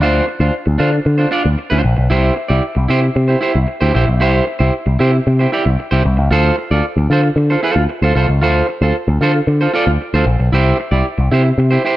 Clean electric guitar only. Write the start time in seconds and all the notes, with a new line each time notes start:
0.01 D4 F4 C5
0.27 muted clean electric guitar stroke
0.40 D4 F4 C5
0.66 muted clean electric guitar stroke
0.78 D4 F4 C5
0.93 muted clean electric guitar stroke
1.05 muted clean electric guitar stroke
1.18 D4 F4 C5
1.31 D4 F4 D5
1.44 muted clean electric guitar stroke
1.58 muted clean electric guitar stroke
1.70 D4 F4 C5
1.83 muted clean electric guitar stroke
1.97 muted clean electric guitar stroke
2.10 E4 G4 C5
2.36 muted clean electric guitar stroke
2.48 E4 G4 D5
2.75 muted clean electric guitar stroke
2.88 E4 G4 C5
3.02 muted clean electric guitar stroke
3.15 muted clean electric guitar stroke
3.28 E4 G4 C5
3.41 E4 G4 C5
3.55 muted clean electric guitar stroke
3.67 muted clean electric guitar stroke
3.81 E4 G4 C5
3.94 E4 G4 C5
4.07 muted clean electric guitar stroke
4.20 E4 G4 C5
4.47 muted clean electric guitar stroke
4.59 E4 G4 C5
4.86 muted clean electric guitar stroke
4.99 E4 G4 C5
5.13 muted clean electric guitar stroke
5.27 muted clean electric guitar stroke
5.39 E4 G4 C5
5.52 E4 G4 D5
5.65 muted clean electric guitar stroke
5.79 muted clean electric guitar stroke
5.91 E4 G4 C5
6.04 muted clean electric guitar stroke
6.17 muted clean electric guitar stroke
6.31 F4 A4 C5
6.58 muted clean electric guitar stroke
6.71 F4 A4 D5
6.98 muted clean electric guitar stroke
7.11 F4 A4 C5
7.24 muted clean electric guitar stroke
7.36 muted clean electric guitar stroke
7.50 F4 A4 C5
7.63 F4 A4 C5
7.77 muted clean electric guitar stroke
7.89 muted clean electric guitar stroke
8.03 F4 A4 C5
8.15 F4 A4 C5
8.29 muted clean electric guitar stroke
8.41 F4 A4 C5
8.69 muted clean electric guitar stroke
8.82 F4 A4 C5
9.08 muted clean electric guitar stroke
9.21 F4 A4 C5
9.34 muted clean electric guitar stroke
9.47 muted clean electric guitar stroke
9.61 F4 A4 C5
9.74 F4 A4 D5
9.88 muted clean electric guitar stroke
10.01 muted clean electric guitar stroke
10.14 F4 A4 C5
10.27 muted clean electric guitar stroke
10.40 muted clean electric guitar stroke
10.53 E4 G4 C5
10.80 muted clean electric guitar stroke
10.91 E4 G4 D5
11.18 muted clean electric guitar stroke
11.31 E4 G4 C5
11.45 muted clean electric guitar stroke
11.59 muted clean electric guitar stroke
11.71 E4 G4 C5
11.85 E4 G4 C5